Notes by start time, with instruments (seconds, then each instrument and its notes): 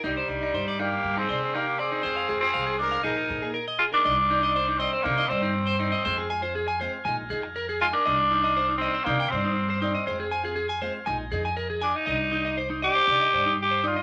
Already playing: transistor combo organ D#5
0.03 upright bass C2, steel-string acoustic guitar G3 D4 D#4, tenor saxophone G3, clean electric guitar D#4, trumpet D#4, transistor combo organ D5 C6
0.17 clean electric guitar C5
0.28 upright bass C2, steel-string acoustic guitar G3 D4 D#4
0.41 steel-string acoustic guitar D4 D#4, clean electric guitar D#4
0.54 upright bass G2, clean electric guitar C5
0.68 clean electric guitar D5
0.78 steel-string acoustic guitar G3 D4 D#4, tenor saxophone A#3, clean electric guitar D#4, trumpet G4
1.04 upright bass G2
1.17 tenor saxophone C4, clean electric guitar D#4, trumpet G#4
1.29 upright bass C3, steel-string acoustic guitar G3 D4 D#4, clean electric guitar C5
1.41 steel-string acoustic guitar D4, muted steel-string acoustic guitar stroke
1.55 tenor saxophone A#3, clean electric guitar D#4, trumpet G4
1.79 tenor saxophone C4, trumpet G#4, clean electric guitar D5
1.92 steel-string acoustic guitar D4, clean electric guitar D#4
2.03 upright bass F2, steel-string acoustic guitar G#3 C4 F4 G#4, clean electric guitar C5, transistor combo organ F5 G#5
2.17 clean electric guitar F5
2.28 upright bass F2, steel-string acoustic guitar G#3 C4 F4 G#4, clean electric guitar G#4
2.40 tenor saxophone C4, steel-string acoustic guitar C4 F4 G#4, trumpet G#4, clean electric guitar C5
2.54 upright bass C2, clean electric guitar F5
2.66 clean electric guitar G#4
2.79 steel-string acoustic guitar G#3 C4 F4 G#4, tenor saxophone D4, trumpet A#4
2.91 clean electric guitar F5
3.03 upright bass A#1, steel-string acoustic guitar F3 D#4 G#4, tenor saxophone D#4, clean electric guitar G#4, trumpet A#4, transistor combo organ D#5 A#5, muted steel-string acoustic guitar stroke
3.27 upright bass A#2, steel-string acoustic guitar F3 A#3 D#4 G#4
3.41 steel-string acoustic guitar A#3 D#4 G#4, clean electric guitar G#4
3.54 clean electric guitar A#4
3.68 clean electric guitar D#5
3.79 tenor saxophone F4, clean electric guitar G#4
3.91 steel-string acoustic guitar A#3 D#4 G#4, tenor saxophone D4, clean electric guitar A#4
4.03 upright bass C2, steel-string acoustic guitar G3 D4 D#4, transistor combo organ C5 D5 C6, clean electric guitar D#5
4.30 steel-string acoustic guitar G3 D4 D#4, clean electric guitar D#4
4.42 steel-string acoustic guitar D4 D#4, clean electric guitar D#5
4.56 clean electric guitar C5
4.68 clean electric guitar D#4
4.79 steel-string acoustic guitar G3 D4 D#4, tenor saxophone C4, clean electric guitar D#5
4.93 clean electric guitar C5
5.03 upright bass C3, steel-string acoustic guitar G3 D4 D#4, tenor saxophone A#3, clean electric guitar D#4
5.18 clean electric guitar D#5
5.28 upright bass G2, steel-string acoustic guitar G3 D4 D#4, tenor saxophone C4, clean electric guitar C5
5.42 clean electric guitar D#4
5.67 clean electric guitar C5
5.78 steel-string acoustic guitar G3 D4 D#4, tenor saxophone C4, clean electric guitar D#4
5.92 clean electric guitar D#5
6.05 upright bass F2, steel-string acoustic guitar G#3 C4 F4, clean electric guitar C5, transistor combo organ F5 G#5
6.18 clean electric guitar G#4
6.29 steel-string acoustic guitar G#3 F4, clean electric guitar G#5, muted steel-string acoustic guitar stroke
6.42 steel-string acoustic guitar C4 F4, clean electric guitar C5
6.55 clean electric guitar G#4
6.68 clean electric guitar G#5
6.81 steel-string acoustic guitar G#3 C4 F4, clean electric guitar C5
7.05 upright bass A#1, steel-string acoustic guitar G#3 D#4, transistor combo organ F5 A#5, clean electric guitar G#5, muted steel-string acoustic guitar stroke
7.30 upright bass F2, steel-string acoustic guitar D#4 F4, clean electric guitar G#4
7.43 muted clean electric guitar stroke
7.56 clean electric guitar A#4
7.69 clean electric guitar G#4
7.80 steel-string acoustic guitar G#3 D#4, tenor saxophone F4, clean electric guitar G#5
7.93 tenor saxophone D4, clean electric guitar A#4
8.05 upright bass C2, steel-string acoustic guitar G3 D4 D#4, transistor combo organ D5 C6, clean electric guitar D#5
8.31 steel-string acoustic guitar G3 D4 D#4, clean electric guitar D#4
8.43 steel-string acoustic guitar D4 D#4, clean electric guitar D#5
8.56 clean electric guitar C5
8.69 clean electric guitar D#4
8.78 steel-string acoustic guitar G3, tenor saxophone C4
8.82 steel-string acoustic guitar D4 D#4, clean electric guitar D#5
8.94 clean electric guitar C5
9.04 upright bass C3, steel-string acoustic guitar G3 D4, tenor saxophone A#3, clean electric guitar D#4
9.09 steel-string acoustic guitar D#4
9.20 clean electric guitar G5
9.30 upright bass G2, tenor saxophone C4, steel-string acoustic guitar D4, clean electric guitar C5
9.34 steel-string acoustic guitar D#4
9.45 clean electric guitar D#4
9.70 clean electric guitar C5
9.81 steel-string acoustic guitar G3 D4 D#4, tenor saxophone C4, clean electric guitar D#4
9.95 clean electric guitar D#5
10.06 upright bass F2, steel-string acoustic guitar G#3 C4 F4, clean electric guitar C5, transistor combo organ F5 G#5 C6
10.20 clean electric guitar G#4
10.31 steel-string acoustic guitar C4 F4, clean electric guitar G#5
10.43 steel-string acoustic guitar C4 F4, clean electric guitar G#4
10.56 clean electric guitar G#4
10.69 clean electric guitar G#5
10.81 steel-string acoustic guitar G#3 C4 F4, clean electric guitar C5
11.06 upright bass A#1, steel-string acoustic guitar G#3 D#4 F4, transistor combo organ D#5 A#5, clean electric guitar G#5
11.31 upright bass F2, steel-string acoustic guitar G#3 D#4 F4, clean electric guitar G#4
11.45 clean electric guitar G#5
11.57 clean electric guitar A#4
11.70 clean electric guitar G#4
11.81 tenor saxophone D4, steel-string acoustic guitar F4, clean electric guitar G#5, muted steel-string acoustic guitar stroke
11.96 tenor saxophone D#4
12.06 upright bass C2, steel-string acoustic guitar G3 D4 D#4, transistor combo organ D5 C6, clean electric guitar D#5
12.31 steel-string acoustic guitar G3 D4 D#4, clean electric guitar D#4
12.45 steel-string acoustic guitar D#4, clean electric guitar D#5, muted steel-string acoustic guitar stroke
12.57 clean electric guitar C5
12.70 clean electric guitar D#4
12.82 steel-string acoustic guitar G3 D4, tenor saxophone G4, clean electric guitar D#5
12.95 clean electric guitar C5
13.07 upright bass C3, steel-string acoustic guitar G3 D4 D#4, muted clean electric guitar stroke
13.21 clean electric guitar D#5
13.33 upright bass G2, steel-string acoustic guitar D4 D#4, clean electric guitar C5
13.46 clean electric guitar D#4
13.62 tenor saxophone G4
13.71 clean electric guitar C5
13.83 steel-string acoustic guitar G3 D4 D#4, clean electric guitar D#4
13.87 tenor saxophone F4
13.96 clean electric guitar D#5